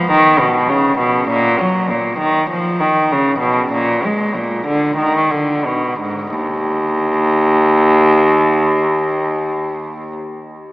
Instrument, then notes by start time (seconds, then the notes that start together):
cello
Already playing: F3
0.11 D#3
0.39 B2
0.69 C#3
0.98 B2
1.29 A#2
1.60 F#3
1.89 A#2
2.19 D#3
2.50 F3
2.80 D#3
3.12 C#3
3.39 B2
3.72 A#2
4.04 G#3
4.36 A#2
4.67 D3
4.97 D#3
5.31 D3
5.66 B2
6.00 G#2
6.35 D#2